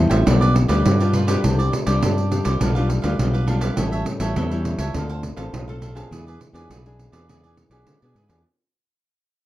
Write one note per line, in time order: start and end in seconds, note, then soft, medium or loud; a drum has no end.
0.00 0.24 E3 soft
0.00 0.23 G3 medium
0.00 0.23 C4 medium
0.00 0.23 E4 medium
0.00 0.10 A4 soft
0.00 0.11 C5 soft
0.10 0.24 A1 medium
0.10 0.25 C5 medium
0.10 0.25 E5 medium
0.10 0.24 G5 medium
0.10 pandeiro medium
0.26 0.64 B1 medium
0.26 0.82 B2 soft
0.26 0.66 G3 soft
0.26 0.66 D4 soft
0.26 0.40 F4 soft
0.26 0.66 F4 medium
0.26 0.40 G4 soft
0.26 0.41 B4 soft
0.26 0.40 D5 soft
0.26 pandeiro medium
0.41 0.54 G4 medium
0.41 0.54 B4 medium
0.41 0.54 D5 medium
0.41 pandeiro soft
0.55 muted cavaquinho stroke soft
0.55 pandeiro medium
0.68 0.82 D2 medium
0.68 0.95 G3 medium
0.68 0.95 D4 medium
0.68 0.95 F4 medium
0.68 0.99 G4 medium
0.68 0.98 B4 medium
0.68 0.97 D5 medium
0.68 pandeiro medium
0.85 1.35 G2 medium
0.85 1.41 B2 medium
0.85 pandeiro medium
1.00 1.25 G3 medium
1.00 1.25 D4 medium
1.00 1.25 F4 medium
1.00 1.13 G4 soft
1.00 1.14 B4 soft
1.00 1.13 D5 soft
1.00 pandeiro soft
1.13 1.27 F4 soft
1.13 1.28 G4 soft
1.13 1.27 B4 soft
1.13 1.26 D5 medium
1.13 pandeiro soft
1.27 1.82 G3 medium
1.27 1.83 D4 medium
1.27 1.83 G4 medium
1.27 1.43 G4 soft
1.27 1.42 B4 medium
1.27 1.42 D5 medium
1.27 pandeiro medium
1.44 1.69 C2 medium
1.44 1.99 C3 medium
1.44 1.57 D4 soft
1.44 1.57 G4 soft
1.44 1.58 C5 soft
1.44 1.58 D5 soft
1.44 pandeiro medium
1.59 1.72 G4 soft
1.59 1.72 C5 medium
1.59 1.72 D5 medium
1.59 pandeiro soft
1.72 muted cavaquinho stroke soft
1.72 pandeiro medium
1.86 1.99 C2 medium
1.86 2.02 G3 medium
1.86 2.27 D4 medium
1.86 2.27 G4 medium
1.86 2.01 G4 soft
1.86 2.01 C5 medium
1.86 2.00 D5 medium
1.86 pandeiro medium
2.01 2.40 G2 medium
2.01 2.30 G3 medium
2.01 2.44 D4 soft
2.01 2.45 G4 soft
2.01 2.44 C5 soft
2.01 2.43 D5 soft
2.01 pandeiro medium
2.18 pandeiro soft
2.31 2.56 G3 soft
2.31 2.56 D4 soft
2.31 2.56 G4 medium
2.31 pandeiro soft
2.44 2.58 C2 medium
2.44 2.60 G4 medium
2.44 2.59 C5 medium
2.44 2.59 D5 medium
2.44 pandeiro medium
2.60 2.98 B1 medium
2.60 3.17 B2 soft
2.60 2.70 G3 soft
2.60 2.74 D4 soft
2.60 2.70 D4 soft
2.60 2.70 F4 medium
2.60 2.74 G4 soft
2.60 2.74 B4 soft
2.60 2.74 F5 medium
2.60 pandeiro medium
2.75 3.01 G3 medium
2.75 3.01 D4 medium
2.75 3.01 F4 medium
2.75 2.88 G4 medium
2.75 2.89 B4 medium
2.75 2.88 F5 medium
2.75 pandeiro soft
2.89 muted cavaquinho stroke soft
2.89 pandeiro soft
3.02 3.17 D2 medium
3.02 3.14 G3 soft
3.02 3.14 D4 medium
3.02 3.15 F4 medium
3.02 3.32 G4 medium
3.02 3.32 B4 medium
3.02 3.31 F5 medium
3.02 pandeiro medium
3.19 3.69 B1 medium
3.19 3.75 B2 medium
3.19 3.45 G3 medium
3.19 3.45 D4 soft
3.19 3.45 F4 soft
3.19 pandeiro medium
3.33 3.46 G4 soft
3.33 3.47 B4 medium
3.33 3.47 F5 medium
3.33 pandeiro soft
3.47 3.73 G3 medium
3.47 3.61 D4 soft
3.47 3.73 D4 soft
3.47 3.73 F4 medium
3.47 3.61 G4 soft
3.47 3.60 B4 soft
3.47 3.59 F5 soft
3.47 pandeiro medium
3.61 3.75 G4 soft
3.61 3.76 B4 medium
3.61 3.75 F5 medium
3.61 pandeiro medium
3.76 4.03 A1 medium
3.76 4.33 A2 medium
3.76 4.17 G3 medium
3.76 4.17 C#4 medium
3.76 4.17 E4 medium
3.76 3.90 G4 soft
3.76 3.91 A4 soft
3.76 3.91 C#5 soft
3.76 3.91 E5 medium
3.76 pandeiro medium
3.92 4.05 A4 soft
3.92 4.06 C#5 medium
3.92 4.05 E5 medium
3.92 pandeiro soft
4.06 muted cavaquinho stroke soft
4.06 pandeiro medium
4.20 4.33 A1 medium
4.20 4.45 G3 medium
4.20 4.45 C#4 medium
4.20 4.45 E4 medium
4.20 4.35 A4 medium
4.20 4.35 C#5 medium
4.20 4.34 E5 medium
4.20 pandeiro medium
4.36 4.74 E2 medium
4.36 4.92 E3 soft
4.36 4.79 G4 soft
4.36 4.79 A4 medium
4.36 4.78 C#5 soft
4.36 4.77 E5 soft
4.36 pandeiro medium
4.51 4.90 G3 medium
4.51 4.90 C#4 medium
4.51 4.91 E4 medium
4.51 pandeiro soft
4.65 pandeiro soft
4.78 4.91 C#2 medium
4.78 4.93 A4 soft
4.78 4.93 C#5 medium
4.78 4.93 E5 medium
4.78 pandeiro medium
4.94 5.32 D2 loud
4.94 5.50 D3 soft
4.94 5.22 C4 soft
4.94 5.08 D4 soft
4.94 5.22 F4 soft
4.94 5.22 A4 soft
4.94 5.09 A4 soft
4.94 5.09 C5 medium
4.94 5.08 F5 soft
4.94 pandeiro medium
5.09 5.22 A4 soft
5.09 5.23 C5 medium
5.09 5.23 F5 medium
5.09 pandeiro soft
5.23 muted cavaquinho stroke soft
5.23 pandeiro medium
5.36 5.50 A1 medium
5.36 5.62 C4 soft
5.36 5.62 F4 medium
5.36 5.62 A4 soft
5.36 5.66 A4 soft
5.36 5.66 C5 medium
5.36 5.65 F5 medium
5.36 pandeiro medium
5.53 6.03 B1 medium
5.53 6.08 A2 soft
5.53 pandeiro medium
5.68 5.92 C4 medium
5.68 5.92 F4 medium
5.68 5.93 A4 medium
5.68 5.81 A4 soft
5.68 5.82 C5 medium
5.68 5.81 F5 medium
5.68 pandeiro soft
5.81 5.95 D4 soft
5.81 5.96 A4 soft
5.81 5.95 C5 soft
5.81 5.94 F5 soft
5.81 pandeiro medium
5.95 6.50 B3 soft
5.95 6.50 D4 soft
5.95 6.50 G#4 medium
5.95 6.10 A4 soft
5.95 6.10 C5 medium
5.95 6.09 F5 medium
5.95 pandeiro medium
6.11 6.36 E2 medium
6.11 6.67 E3 soft
6.11 6.25 E4 soft
6.11 6.25 G#4 soft
6.11 6.25 B4 soft
6.11 6.26 D5 soft
6.11 pandeiro medium
6.27 6.40 G#4 soft
6.27 6.40 B4 medium
6.27 6.40 D5 medium
6.27 pandeiro soft
6.41 muted cavaquinho stroke soft
6.41 pandeiro medium
6.53 6.66 E2 medium
6.53 6.79 B3 medium
6.53 6.79 D4 soft
6.53 6.79 G#4 medium
6.53 6.69 G#4 medium
6.53 6.69 B4 medium
6.53 6.68 D5 medium
6.53 pandeiro medium
6.70 7.07 B1 medium
6.70 7.25 B2 soft
6.70 7.13 E4 soft
6.70 7.13 G#4 soft
6.70 7.12 B4 soft
6.70 7.11 D5 soft
6.70 pandeiro medium
6.86 7.24 B3 medium
6.86 7.24 D4 medium
6.86 7.25 G#4 medium
6.86 pandeiro soft
6.99 pandeiro soft
7.12 7.62 E2 medium
7.12 7.27 G#4 soft
7.12 7.27 B4 soft
7.12 7.26 D5 medium
7.12 pandeiro medium
7.29 7.84 E3 soft
7.29 7.68 B3 soft
7.29 7.68 D4 soft
7.29 7.42 E4 soft
7.29 7.42 G#4 soft
7.29 7.68 G#4 medium
7.29 7.43 B4 soft
7.29 7.42 D5 soft
7.29 pandeiro medium
7.43 7.56 G#4 soft
7.43 7.56 B4 soft
7.43 7.57 D5 medium
7.43 pandeiro soft
7.57 muted cavaquinho stroke soft
7.57 pandeiro medium
7.70 7.83 B1 medium
7.70 7.96 B3 medium
7.70 7.97 D4 soft
7.70 7.97 G#4 medium
7.70 8.00 G#4 soft
7.70 8.00 B4 soft
7.70 7.99 D5 medium
7.70 pandeiro medium
7.87 8.43 B2 soft
7.87 8.00 D3 medium
7.87 pandeiro medium
8.02 8.14 B2 medium
8.02 8.27 B3 medium
8.02 8.27 D4 medium
8.02 8.27 G#4 medium
8.02 8.15 G#4 soft
8.02 8.16 B4 soft
8.02 8.15 D5 medium
8.02 pandeiro soft
8.15 8.28 G#2 medium
8.15 8.29 E4 soft
8.15 8.30 G#4 soft
8.15 8.29 B4 soft
8.15 8.27 D5 soft
8.15 pandeiro soft
8.29 8.43 E2 medium
8.29 8.40 B3 soft
8.29 8.40 D4 medium
8.29 8.40 G#4 medium
8.29 8.44 G#4 soft
8.29 8.44 B4 soft
8.29 8.43 D5 medium
8.29 pandeiro medium